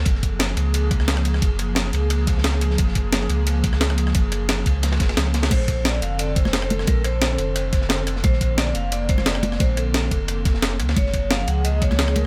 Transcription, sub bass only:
0.06 0.56 F#1 loud
0.57 1.41 C#2 loud
1.42 1.92 F#1 loud
1.93 2.77 C#2 loud
2.78 3.28 F#1 loud
3.30 4.14 C#2 loud
4.15 4.65 F#1 loud
4.66 4.99 C#2 loud
5.00 5.16 F#1 loud
5.17 5.50 C#2 medium
5.51 6.01 A#1 medium
6.02 6.86 F1 loud
6.87 7.37 A#1 medium
7.39 8.23 F1 loud
8.24 8.74 A#1 loud
8.75 9.59 F1 loud
9.60 10.10 A#1 medium
10.11 10.81 F1 loud
10.79 10.95 D2 medium
10.96 11.46 F#1 loud
11.48 12.27 C#2 loud

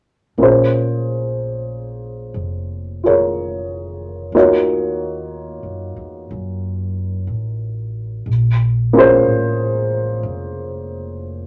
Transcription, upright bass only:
0.38 2.32 A#1 medium
2.34 4.29 F1 medium
4.32 5.61 D#2 medium
5.63 5.95 F#2 soft
5.96 6.28 E2 soft
6.31 7.25 F#2 medium
7.27 8.23 A1 medium
8.26 9.21 A#1 medium
9.24 10.20 A1 medium
10.23 11.47 F1 medium

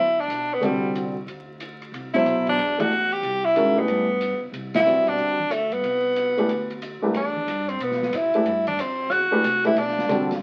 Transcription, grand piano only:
0.61 1.11 D3 medium
0.61 1.12 G3 medium
0.61 1.12 C4 medium
0.61 1.12 F#4 medium
0.61 1.12 A4 medium
2.14 2.56 B2 soft
2.14 2.56 F#3 medium
2.14 2.56 E4 soft
2.14 2.56 A4 soft
2.14 2.57 C5 medium
2.78 2.89 E3 medium
2.78 2.89 A3 medium
2.78 2.89 D4 medium
2.78 2.90 G4 medium
2.78 2.90 D5 medium
3.55 3.74 D#3 soft
3.55 3.75 G#3 soft
3.55 3.75 C#4 medium
3.55 3.75 F#4 medium
3.55 3.75 A#4 medium
3.75 4.04 E3 medium
3.75 4.05 A3 soft
3.75 4.05 D4 medium
3.75 4.05 G4 soft
3.75 4.05 B4 medium
4.85 5.35 G3 soft
4.85 5.35 C4 soft
4.85 5.36 F#4 medium
4.85 5.36 B4 soft
4.85 5.36 D5 medium
6.37 6.48 E3 medium
6.37 6.48 A3 medium
6.37 6.49 D4 medium
6.37 6.49 G4 medium
6.37 6.49 B4 medium
7.02 7.13 C2 medium
7.02 7.13 E3 medium
7.02 7.14 A3 medium
7.02 7.14 D4 medium
7.02 7.14 G4 medium
7.02 7.14 B4 medium
8.34 8.45 E3 medium
8.34 8.45 A3 medium
8.34 8.45 D4 medium
8.34 8.45 G4 medium
8.34 8.46 B4 medium
9.31 9.42 E3 medium
9.31 9.43 A3 medium
9.31 9.43 D4 medium
9.31 9.43 G4 medium
9.31 9.43 B4 medium
9.64 9.75 E3 medium
9.64 9.76 A3 medium
9.64 9.76 D4 medium
9.64 9.76 G4 medium
9.64 9.76 B4 medium
10.09 10.28 D3 medium
10.09 10.28 G3 medium
10.09 10.29 C4 medium
10.09 10.29 F#4 medium
10.09 10.29 A4 medium

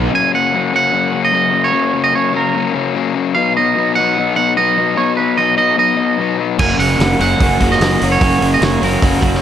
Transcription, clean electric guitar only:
0.15 0.32 G#5 loud
0.35 0.75 F#5 loud
0.76 1.24 F#5 loud
1.25 1.65 D#5 loud
1.64 2.06 C#5 loud
2.04 2.13 D#5 loud
2.15 2.34 C#5 medium
2.36 2.73 A#4 medium
3.35 3.56 F5 loud
3.57 3.95 D#5 medium
3.95 4.34 F#5 loud
4.36 4.57 F#5 loud
4.57 4.99 D#5 loud
4.97 5.16 C#5 loud
5.17 5.36 B4 medium
5.37 5.57 D#5 loud
5.58 5.77 D#5 loud
5.79 6.35 D#5 loud
6.60 6.79 G#5 loud
6.79 7.17 F#5 loud
7.21 7.71 F#5 loud
7.72 8.09 D#5 loud
8.12 8.53 C#5 medium
8.54 8.64 D#5 medium
8.64 8.83 C#5 loud
8.84 9.20 A#4 medium

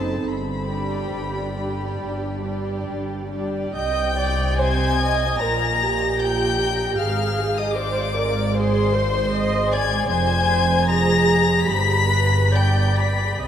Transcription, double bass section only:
0.00 0.15 F#1 medium
0.25 1.02 G1 medium
1.14 1.91 G1 medium
2.02 2.78 G1 medium
2.89 3.65 G1 medium
3.75 5.37 C2 medium
5.42 6.97 A#1 medium
6.99 10.06 G#1 medium
10.11 11.64 F1 medium
11.68 13.42 G1 medium
13.42 13.48 C2 medium

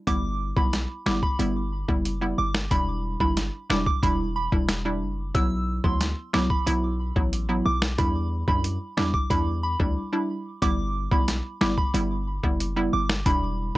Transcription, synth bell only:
0.07 0.37 D6 loud
0.57 0.71 B5 medium
1.06 1.21 D6 medium
1.23 1.37 B5 medium
2.38 2.53 D6 medium
2.71 3.00 B5 medium
3.21 3.35 B5 medium
3.70 3.85 D6 medium
3.86 4.01 D6 medium
4.03 4.18 B5 medium
4.36 4.51 B5 medium
5.35 5.64 E6 loud
5.84 5.99 C6 medium
6.34 6.48 D6 medium
6.50 6.65 B5 medium
7.65 7.80 D6 medium
7.99 8.28 B5 medium
8.48 8.63 B5 medium
8.97 9.12 D6 medium
9.14 9.29 D6 medium
9.30 9.45 B5 medium
9.63 9.78 B5 medium
10.62 10.92 D6 loud
11.12 11.26 B5 medium
11.61 11.76 D6 medium
11.78 11.92 B5 medium
12.93 13.08 D6 medium
13.26 13.55 B5 medium

